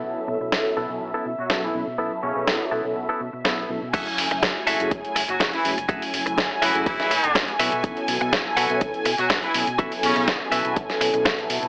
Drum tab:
CC |----------------|----------------|x---------------|----------------|
HH |----------------|----------------|xxoxx-oxxxoxxxox|xooxx-oxxxoxxxox|
SD |----o-------o---|----o-------o---|----o-------o---|----o----o--o---|
BD |----------------|----------------|o---o---o---o---|o---o---o---o---|

CC |----------------|----------------|
HH |xxoxx-oxxxoxxxox|xooxx-oxxxoxxxox|
SD |----o-------o---|----o----o--o---|
BD |o---o---o---o---|o---o---o---o---|